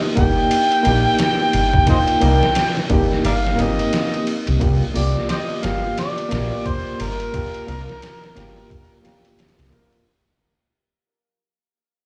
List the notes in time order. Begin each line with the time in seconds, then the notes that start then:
Already playing: A#3 D4 D#4 G4
0.15 G1 A#3 D4 D#4 G4 G5, kick, ride
0.51 ride
0.72 ride
0.83 A#1 A#3 D4 D#4, ride
0.89 G4
1.19 snare, ride
1.53 G1, ride
1.74 kick
1.87 A#3 D4 D#4 F4 C5 D#5 G5, kick, ride
2.08 ride
2.21 C2 A#3 D4 D#4 A#4, ride
2.43 snare
2.55 snare, ride
2.77 snare
2.90 G1 A#3 D4 D#4 G4, kick, ride
3.12 snare
3.25 G1 A#4 D5 F5, ride
3.47 snare
3.56 G1 A#3 C4, ride
3.60 D#4 G4 D#5, snare
3.79 ride
3.93 snare, ride
4.14 ride
4.27 ride
4.47 C2, ride
4.60 C2 A#3 D4 F4 G4, kick, ride
4.94 C2 A#3 D4 F4 G4 D5, open hi-hat
5.17 snare
5.29 G4 C5 D#5, snare, ride
5.63 G1 A#3 D4 F4 G4 F5, snare, ride
5.98 D5, snare, ride
6.18 ride
6.29 A#1 A#3 D4 F4, snare, ride
6.34 G4
6.66 C5, kick, ride
7.00 G1 A#4, ride
7.20 ride
7.32 A#3 D4 F4 G4, kick, ride
7.54 ride
7.67 C2 A#3 D4 F4 A#4, ride
7.89 snare
8.02 snare, ride
8.24 snare
8.35 G1 A#3 D4 F4 G4, snare, ride
8.70 kick, ride
9.02 A#3 D4 F4 G4, snare, ride
9.25 ride
9.39 snare, ride
9.49 snare, ride
9.59 C2, snare, ride
9.66 snare, ride
9.70 A#3 D4 F4 A#4, ride
9.93 ride